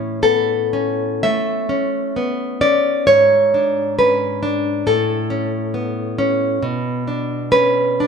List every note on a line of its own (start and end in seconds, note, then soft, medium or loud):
0.00 1.20 A2 medium
0.00 0.72 C#4 soft
0.23 1.71 B3 soft
0.23 1.20 A4 medium
0.73 1.68 C#4 soft
1.23 2.62 A3 soft
1.23 2.57 E5 medium
1.69 2.60 C#4 medium
2.16 3.07 B3 soft
2.61 3.07 C#4 soft
2.61 3.05 D5 medium
3.07 4.83 G#2 medium
3.07 3.94 C#5 medium
3.54 4.41 D4 soft
3.99 4.87 C#4 soft
3.99 4.84 B4 medium
4.43 4.87 D4 medium
4.87 6.58 A2 medium
4.87 6.58 A4 medium
5.30 6.17 C#4 medium
5.74 6.62 B3 soft
6.18 6.62 C#4 medium
6.63 8.07 B2 medium
7.08 7.99 D4 soft
7.52 8.07 C#4 soft
7.52 8.07 B4 medium
8.00 8.07 D4 medium